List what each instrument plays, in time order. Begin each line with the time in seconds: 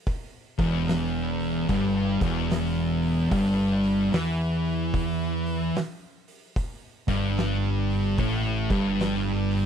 0.07 kick, open hi-hat
0.58 fingered electric bass E1, distorted electric guitar E2, kick, open hi-hat
0.88 snare, open hi-hat
1.40 open hi-hat
1.69 fingered electric bass G1, distorted electric guitar G2, kick, open hi-hat
2.21 fingered electric bass E1, distorted electric guitar E2, kick, open hi-hat
2.50 snare, open hi-hat
3.02 open hi-hat
3.31 fingered electric bass G1, distorted electric guitar G2, kick, open hi-hat
3.83 open hi-hat
4.12 fingered electric bass E2, distorted electric guitar E3, snare, open hi-hat
4.65 open hi-hat
4.94 kick, open hi-hat
5.46 open hi-hat
5.75 snare, open hi-hat
6.28 open hi-hat
6.56 kick, open hi-hat
7.08 fingered electric bass G1, distorted electric guitar G2, kick, open hi-hat
7.37 snare, open hi-hat
7.90 open hi-hat
8.18 fingered electric bass A1, distorted electric guitar A2, kick, open hi-hat
8.70 fingered electric bass G1, distorted electric guitar G2, kick, open hi-hat
9.00 snare, open hi-hat
9.51 open hi-hat